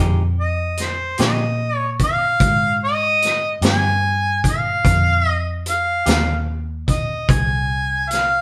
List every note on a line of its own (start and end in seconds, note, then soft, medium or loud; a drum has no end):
0.00 1.15 F2 medium
0.00 0.21 F3 medium
0.00 0.21 G#3 medium
0.00 0.22 D#4 medium
0.00 0.22 G4 medium
0.40 0.83 D#5 medium
0.77 1.20 C5 medium
0.77 snare soft
0.77 closed hi-hat soft
1.18 2.37 A#2 medium
1.18 1.44 G#3 medium
1.18 1.44 D#4 medium
1.18 1.43 G4 medium
1.18 snare medium
1.18 closed hi-hat medium
1.22 1.44 F3 soft
1.22 1.77 D#5 medium
1.77 1.98 C#5 medium
1.99 kick medium
1.99 closed hi-hat medium
2.04 2.79 F5 medium
2.40 3.59 G#2 medium
2.40 kick loud
2.40 closed hi-hat medium
2.85 3.60 D#5 medium
3.22 snare soft
3.22 closed hi-hat soft
3.62 4.80 G2 medium
3.62 3.88 F3 soft
3.62 3.87 G#3 medium
3.62 3.87 D#4 medium
3.62 3.87 G4 medium
3.62 snare loud
3.62 closed hi-hat medium
3.69 4.43 G#5 medium
4.44 kick medium
4.44 closed hi-hat medium
4.49 5.28 F5 medium
4.84 6.03 F2 medium
4.84 kick loud
4.84 closed hi-hat medium
5.28 5.64 D#5 medium
5.66 6.45 F5 medium
5.66 closed hi-hat medium
6.06 7.25 D#2 medium
6.06 6.32 F3 medium
6.06 6.32 G#3 medium
6.06 6.31 D#4 medium
6.06 6.30 G4 medium
6.06 snare loud
6.06 closed hi-hat medium
6.88 7.33 D#5 medium
6.88 kick medium
6.88 closed hi-hat medium
7.29 8.41 C2 medium
7.29 8.11 G#5 loud
7.29 kick loud
7.29 closed hi-hat medium
8.09 8.41 F5 medium
8.09 snare soft
8.09 closed hi-hat medium